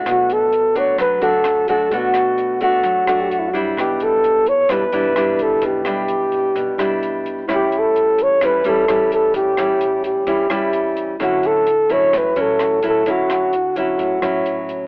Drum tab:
HH |xxxxxxxx|xxxxxxxx|xxxxxxxx|xxxxxxxx|
SD |r---r-r-|-r---r--|r---r-r-|-r---r--|
BD |o--oo--o|o--oo--o|o--oo--o|o--oo--o|

HH |xxxxxxxx|xxxxxxxx|xxxxxxxx|xxxxxxxx|
SD |r---r-r-|-r---r--|r---r-r-|-r---r--|
BD |o--oo--o|o--oo--o|o--oo--o|o--oo--o|